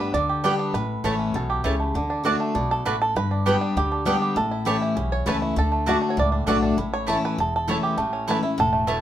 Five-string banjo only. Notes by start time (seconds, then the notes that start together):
0.00 B4
0.14 D5
0.29 G4
0.44 D4
0.59 G3
0.74 B4
1.04 A3
1.19 C#4
1.36 A4
1.50 G4
1.64 E4
1.80 A3
1.95 D3
2.10 D4
2.25 D4
2.40 A3
2.55 D4
2.71 A4
2.86 B4
3.02 A4
3.17 B4
3.31 D4
3.46 G4
3.61 G3
3.77 G4
3.92 D4
4.06 G3
4.22 G4
4.37 A4
4.51 E4
4.67 G4
4.82 E4
4.96 C#4
5.12 C#5
5.29 B4
5.42 E4
5.59 A4
5.72 A3
5.89 F#4
6.02 A3
6.10 C#5
6.19 D5
6.32 D4
6.46 D4
6.62 D4
6.78 E4
6.93 C#5
7.08 A3
7.25 B4
7.40 A4
7.56 A4
7.71 C#5
7.83 G4
7.98 A3
8.13 C#4
8.31 B4
8.43 E4
8.60 A4
8.73 A3
8.88 E4